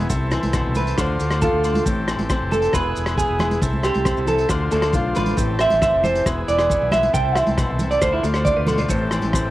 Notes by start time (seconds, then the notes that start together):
Already playing: E4
0.09 C2 C3 C4 A4, kick, closed hi-hat, maracas
0.31 E3, cross-stick, closed hi-hat, low agogo, maracas
0.43 C2, closed hi-hat, high conga
0.53 B2, kick, cross-stick, closed hi-hat, low agogo, maracas
0.66 C2
0.75 C3 B4, closed hi-hat, high conga, low conga, maracas
0.87 closed hi-hat, maracas
0.97 D2 D3 D4 F4 C5, kick, cross-stick, closed hi-hat, low agogo, maracas
1.20 D2 A3, closed hi-hat, maracas
1.30 cross-stick, closed hi-hat, low agogo, maracas
1.42 F4 A4, kick, closed hi-hat, maracas
1.53 D2
1.64 A3, closed hi-hat, low agogo, maracas
1.74 closed hi-hat, high conga
1.85 A1 A2 C4 G4 A4, kick, closed hi-hat, maracas
2.08 E3, cross-stick, closed hi-hat, low agogo, maracas
2.19 A1, closed hi-hat, high conga
2.30 C4, kick, cross-stick, closed hi-hat, low agogo, maracas
2.41 F1
2.51 E3 A4, closed hi-hat, high conga, low conga, maracas
2.62 closed hi-hat, maracas
2.73 E1 E2 B3 E4 G#4 B4, kick, cross-stick, closed hi-hat, low agogo, maracas
2.95 E1, closed hi-hat, maracas
3.06 cross-stick, closed hi-hat, low agogo, maracas
3.18 B3 G#4, kick, closed hi-hat, maracas
3.30 E1
3.39 E3, cross-stick, closed hi-hat, high conga, low conga, low agogo
3.51 closed hi-hat, high conga
3.61 C2 C3 C4 E4 A4, kick, closed hi-hat, maracas
3.73 high conga
3.83 G4, muted nylon-string guitar stroke, cross-stick, closed hi-hat, low agogo, maracas
3.94 C2, closed hi-hat, high conga
4.05 C4, kick, cross-stick, closed hi-hat, low agogo, maracas
4.17 C2, maracas
4.26 E3 A4, closed hi-hat, low conga, maracas
4.38 closed hi-hat, maracas
4.48 D2 D3 D4 F4 C5, muted clean electric guitar stroke, kick, cross-stick, closed hi-hat, low agogo, maracas
4.71 D2 A3 A4, closed hi-hat, maracas
4.82 cross-stick, closed hi-hat, low agogo
4.93 B1 F4, kick, closed hi-hat, maracas
5.15 A1 A3 B4, closed hi-hat, high conga, low conga, low agogo, maracas
5.26 closed hi-hat, high conga
5.37 A1 A2 C4 G4 A4, kick, closed hi-hat, maracas
5.59 E3 E5, cross-stick, closed hi-hat, low agogo, maracas
5.70 A1, closed hi-hat, high conga
5.82 C4 E5, kick, cross-stick, closed hi-hat, low agogo, maracas
5.94 F1
6.03 E3 C5, closed hi-hat, high conga, low conga, maracas
6.15 closed hi-hat, maracas
6.25 E1 E2 B3 E4 G#4, kick, cross-stick, closed hi-hat, low agogo, maracas
6.48 E1 E3 D5, closed hi-hat, maracas
6.59 cross-stick, closed hi-hat, low agogo, maracas
6.70 B3, kick, closed hi-hat, maracas
6.82 B1
6.92 E5, muted nylon-string guitar stroke, cross-stick, closed hi-hat, high conga, low conga, low agogo, maracas
7.03 closed hi-hat, high conga
7.13 C2 C3 C4 A4 G5, kick, closed hi-hat, maracas
7.36 E3 E5, cross-stick, closed hi-hat, low agogo, maracas
7.47 C2, closed hi-hat, high conga
7.58 B2, kick, cross-stick, closed hi-hat, low agogo, maracas
7.70 C2
7.79 C3, closed hi-hat, high conga, low conga, maracas
7.91 D5, closed hi-hat, maracas
8.02 D2 D3 D4 F4 C5, kick, cross-stick, closed hi-hat, low agogo, maracas
8.12 E4
8.23 D2 A3, muted clean electric guitar stroke, closed hi-hat, maracas
8.34 C5, cross-stick, closed hi-hat, low agogo, maracas
8.45 C3 D5, kick, closed hi-hat, maracas
8.57 D2 B4
8.67 B2 A4, closed hi-hat, high conga, low conga, low agogo, maracas
8.78 B4, closed hi-hat, high conga
8.88 A1 A2 C4 G4 A4 C5, kick, closed hi-hat, maracas
9.11 E3, cross-stick, closed hi-hat, low agogo, maracas
9.22 A1, closed hi-hat, high conga
9.33 C4, kick, cross-stick, closed hi-hat, low agogo, maracas
9.45 A1